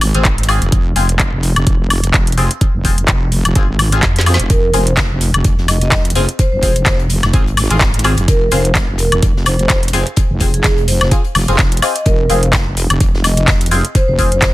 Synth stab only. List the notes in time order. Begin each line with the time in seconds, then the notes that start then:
0.15 C4 F4 G#4
0.49 C4 F4 G#4
0.96 C4 F4 G#4
2.38 C4 F4 G#4
2.85 C4 F4 G#4
3.56 C4 F4 G#4
3.92 C4 F4 G#4
4.26 C4 F4 G#4
4.74 C4 F4 G#4
6.16 C4 F4 G#4
6.63 C4 F4 G#4
7.34 C4 F4 G#4
7.71 C4 F4 G#4
8.04 C4 F4 G#4
8.52 C4 F4 G#4
9.93 C4 F4 G#4
10.41 C4 F4 G#4
11.11 C4 F4 G#4
11.48 C4 F4 G#4
11.82 C4 F4 G#4
12.30 C4 F4 G#4
13.71 C4 F4 G#4
14.19 C4 F4 G#4